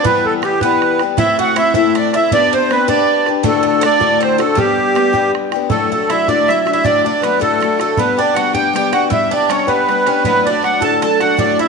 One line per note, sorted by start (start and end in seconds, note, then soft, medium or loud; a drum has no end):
0.04 0.41 E3 medium
0.04 0.42 G3 medium
0.04 0.57 B3 medium
0.04 0.43 B3 medium
0.04 0.44 G4 loud
0.04 0.26 B4 loud
0.04 bodhran loud
0.25 0.33 A4 medium
0.25 bodhran soft
0.42 0.61 E3 medium
0.42 0.61 G3 medium
0.42 0.61 B3 medium
0.42 0.60 G4 loud
0.42 0.60 G4 medium
0.42 bodhran medium
0.61 1.01 E3 medium
0.61 1.01 G3 medium
0.61 1.01 B3 medium
0.61 1.02 B3 medium
0.61 0.99 G4 medium
0.61 1.01 B4 medium
0.61 bodhran medium
0.82 bodhran medium
0.99 1.18 G3 soft
0.99 1.19 B3 medium
0.99 1.18 G4 medium
0.99 bodhran medium
1.17 1.56 A2 medium
1.17 1.55 A3 medium
1.17 1.56 C4 medium
1.17 1.37 E4 loud
1.17 1.57 E4 medium
1.17 1.57 A4 medium
1.17 1.38 E5 loud
1.17 bodhran loud
1.39 1.56 F#4 medium
1.39 1.56 F#5 loud
1.39 bodhran soft
1.56 1.74 A3 medium
1.56 1.75 C4 medium
1.56 1.74 E4 medium
1.56 1.73 A4 medium
1.56 1.73 E5 loud
1.56 bodhran medium
1.74 2.14 A2 medium
1.74 2.14 A3 medium
1.74 2.14 C4 medium
1.74 1.94 E4 medium
1.74 2.14 E4 medium
1.74 2.12 A4 medium
1.74 1.96 E5 loud
1.74 bodhran medium
1.95 2.12 D4 medium
1.95 2.15 D5 medium
1.95 bodhran medium
2.13 2.32 C4 medium
2.13 2.32 E4 medium
2.13 2.31 A4 medium
2.13 2.31 E5 loud
2.13 bodhran medium
2.32 2.69 B3 medium
2.32 2.53 D4 medium
2.32 2.72 D4 medium
2.32 2.71 G4 medium
2.32 2.72 B4 medium
2.32 2.54 D5 loud
2.32 bodhran medium
2.53 2.89 C4 medium
2.53 2.71 C5 loud
2.53 bodhran soft
2.70 2.88 B3 medium
2.70 2.88 D4 medium
2.70 2.87 G4 medium
2.70 2.87 B4 loud
2.70 2.87 B4 medium
2.70 bodhran medium
2.88 3.28 B3 medium
2.88 3.28 D4 medium
2.88 3.29 D4 medium
2.88 3.27 G4 medium
2.88 3.25 B4 medium
2.88 3.28 D5 loud
2.88 bodhran medium
3.26 3.44 D4 soft
3.26 3.45 G4 medium
3.26 3.44 B4 medium
3.26 bodhran medium
3.43 3.83 D2 medium
3.43 3.83 A2 medium
3.43 3.82 D3 medium
3.43 3.62 A3 medium
3.43 3.84 A3 medium
3.43 3.83 D4 medium
3.43 3.84 F#4 medium
3.43 bodhran loud
3.47 3.66 A4 medium
3.63 3.81 A3 medium
3.63 bodhran soft
3.67 3.85 A4 medium
3.81 4.00 D3 medium
3.81 4.00 A3 medium
3.81 4.18 D4 loud
3.81 4.00 D4 medium
3.81 4.20 D5 loud
3.81 bodhran medium
3.85 3.99 F#4 medium
4.00 4.40 D2 medium
4.00 4.40 A2 medium
4.00 4.41 D3 medium
4.00 4.38 A3 medium
4.00 4.41 D4 medium
4.00 4.37 F#4 medium
4.00 bodhran medium
4.20 4.38 C4 medium
4.20 4.41 C5 medium
4.20 bodhran medium
4.38 4.55 D3 soft
4.38 4.58 A3 medium
4.38 4.57 A3 medium
4.38 4.56 D4 medium
4.38 4.57 F#4 medium
4.38 4.58 A4 medium
4.38 bodhran medium
4.55 5.30 G3 medium
4.55 4.94 G3 medium
4.55 4.95 B3 medium
4.55 4.97 D4 medium
4.55 5.31 G4 loud
4.55 4.97 G4 medium
4.55 bodhran medium
4.78 bodhran soft
4.95 5.14 G3 medium
4.95 5.13 B3 medium
4.95 5.12 D4 medium
4.95 5.12 G4 medium
4.95 bodhran medium
5.13 5.54 G3 medium
5.13 5.53 B3 medium
5.13 5.54 D4 medium
5.13 5.51 G4 medium
5.13 bodhran medium
5.35 bodhran medium
5.52 5.71 B3 medium
5.52 5.70 D4 medium
5.52 5.71 G4 medium
5.52 bodhran medium
5.70 5.92 D2 medium
5.70 5.92 A2 medium
5.70 5.92 F#3 medium
5.70 5.91 A3 medium
5.70 5.92 A3 medium
5.70 5.92 D4 medium
5.70 5.90 F#4 medium
5.70 5.90 A4 medium
5.70 bodhran loud
5.91 6.09 A3 medium
5.91 6.10 A3 soft
5.91 6.09 D4 soft
5.91 6.09 F#4 soft
5.91 6.10 A4 medium
5.91 bodhran soft
5.95 6.08 F#3 soft
6.09 6.28 F#3 medium
6.09 6.28 A3 medium
6.09 6.28 D4 medium
6.09 6.28 E4 medium
6.09 6.27 F#4 medium
6.09 6.28 E5 medium
6.09 bodhran medium
6.28 6.50 D2 medium
6.28 6.50 A2 medium
6.28 6.47 F#3 medium
6.28 6.49 A3 medium
6.28 6.49 D4 medium
6.28 6.48 D4 medium
6.28 6.49 F#4 medium
6.28 6.49 D5 medium
6.28 bodhran medium
6.48 6.66 F#3 medium
6.48 6.65 A3 medium
6.48 6.67 D4 medium
6.48 6.61 E4 medium
6.48 6.59 E5 medium
6.48 bodhran medium
6.52 6.64 F#4 medium
6.61 6.71 E5 medium
6.66 6.83 F#3 soft
6.66 6.84 A3 medium
6.66 6.83 D4 soft
6.66 6.84 F#4 medium
6.66 bodhran medium
6.72 6.84 E4 medium
6.72 6.85 E5 medium
6.84 7.05 D2 medium
6.84 7.05 A2 medium
6.84 7.06 F#3 medium
6.84 7.04 A3 medium
6.84 7.05 D4 medium
6.84 7.03 F#4 medium
6.84 7.02 D5 loud
6.84 bodhran medium
7.04 7.21 F#3 soft
7.04 7.23 A3 soft
7.04 7.22 D4 medium
7.04 7.22 D4 soft
7.04 7.23 F#4 soft
7.04 7.21 D5 medium
7.04 bodhran soft
7.22 7.40 F#3 medium
7.22 7.39 A3 medium
7.22 7.41 B3 medium
7.22 7.40 D4 medium
7.22 7.38 F#4 medium
7.22 7.39 B4 medium
7.22 bodhran medium
7.40 7.63 D2 medium
7.40 7.63 A2 medium
7.40 7.59 F#3 medium
7.40 7.61 A3 medium
7.40 7.80 A3 medium
7.40 7.60 D4 medium
7.40 7.61 F#4 medium
7.40 7.78 A4 loud
7.40 bodhran medium
7.60 7.79 F#3 medium
7.60 7.79 A3 medium
7.60 7.80 D4 medium
7.60 7.77 F#4 medium
7.60 bodhran medium
7.79 7.97 F#3 soft
7.79 7.98 A3 medium
7.79 7.97 A3 medium
7.79 7.98 D4 soft
7.79 7.97 F#4 medium
7.79 7.98 A4 medium
7.79 bodhran medium
7.97 8.19 G3 medium
7.97 8.19 B3 medium
7.97 8.18 B3 medium
7.97 8.18 D4 medium
7.97 8.16 G4 medium
7.97 8.19 B4 loud
7.97 bodhran medium
8.17 8.35 B3 soft
8.17 8.36 D4 medium
8.17 8.36 D4 soft
8.17 8.36 G4 medium
8.17 8.35 D5 medium
8.17 bodhran soft
8.34 8.54 G3 medium
8.34 8.54 B3 medium
8.34 8.53 D4 medium
8.34 8.53 F#4 medium
8.34 8.52 G4 medium
8.34 8.52 F#5 medium
8.34 bodhran medium
8.53 8.72 G3 soft
8.53 8.73 B3 medium
8.53 8.75 D4 medium
8.53 8.75 G4 medium
8.53 8.73 G5 loud
8.53 bodhran medium
8.73 8.93 G3 medium
8.73 8.93 B3 medium
8.73 8.93 D4 medium
8.73 8.92 G4 loud
8.73 8.94 G5 loud
8.73 bodhran medium
8.78 8.91 G4 medium
8.92 9.10 B3 soft
8.92 9.11 D4 medium
8.92 9.10 F#4 medium
8.92 9.11 G4 medium
8.92 9.02 F#5 medium
8.92 bodhran medium
9.10 9.32 G3 medium
9.10 9.33 B3 medium
9.10 9.32 D4 medium
9.10 9.30 E4 medium
9.10 9.30 G4 medium
9.10 9.32 E5 medium
9.10 bodhran medium
9.31 9.50 D4 medium
9.31 9.50 D4 soft
9.31 9.50 G4 soft
9.31 9.51 D5 medium
9.31 bodhran soft
9.35 9.49 B3 soft
9.49 9.68 G3 medium
9.49 9.68 B3 medium
9.49 9.68 C#4 medium
9.49 9.67 D4 medium
9.49 9.66 G4 medium
9.49 9.69 C#5 medium
9.49 bodhran medium
9.59 bodhran soft
9.67 9.87 G3 medium
9.67 10.04 B3 medium
9.67 9.89 B3 medium
9.67 9.89 D4 medium
9.67 9.89 G4 medium
9.67 10.23 B4 medium
9.67 bodhran medium
9.88 10.07 G3 medium
9.88 10.08 B3 medium
9.88 10.07 D4 medium
9.88 10.05 G4 medium
9.88 bodhran medium
10.06 10.26 B3 soft
10.06 10.24 C#4 medium
10.06 10.25 D4 medium
10.06 10.25 G4 medium
10.06 bodhran medium
10.24 10.46 D2 medium
10.24 10.46 A2 medium
10.24 10.46 F#3 medium
10.24 10.46 A3 medium
10.24 10.45 B3 medium
10.24 10.47 D4 medium
10.24 10.46 F#4 medium
10.24 10.47 B4 loud
10.24 bodhran medium
10.45 10.64 A3 soft
10.45 10.80 D4 medium
10.45 10.63 D4 soft
10.45 10.64 F#4 soft
10.45 10.62 D5 medium
10.45 bodhran soft
10.50 10.61 F#3 soft
10.63 10.81 F#3 medium
10.63 10.80 A3 medium
10.63 10.81 D4 medium
10.63 10.79 F#4 medium
10.63 10.83 F#5 loud
10.63 bodhran medium
10.81 11.03 D2 medium
10.81 11.03 A2 medium
10.81 11.01 F#3 medium
10.81 11.03 A3 medium
10.81 11.02 D4 medium
10.81 11.02 F#4 medium
10.81 11.01 A4 medium
10.81 11.03 A5 medium
10.81 bodhran medium
11.02 11.20 F#3 medium
11.02 11.20 A3 medium
11.02 11.21 D4 medium
11.02 11.19 F#4 medium
11.02 11.19 A4 medium
11.02 11.22 A5 medium
11.02 bodhran medium
11.20 11.37 F#3 soft
11.20 11.38 A3 medium
11.20 11.37 D4 medium
11.20 11.38 F#4 medium
11.20 11.37 F#4 medium
11.20 11.37 F#5 loud
11.20 bodhran medium
11.37 11.59 D2 medium
11.37 11.59 A2 medium
11.37 11.60 F#3 medium
11.37 11.58 A3 medium
11.37 11.60 D4 medium
11.37 11.58 D4 medium
11.37 11.57 F#4 medium
11.37 11.59 D5 medium
11.37 bodhran medium
11.58 11.68 A3 soft
11.58 11.68 D4 soft
11.58 11.68 E4 medium
11.58 11.68 F#4 soft
11.58 11.68 E5 medium
11.58 bodhran soft
11.62 11.68 F#3 soft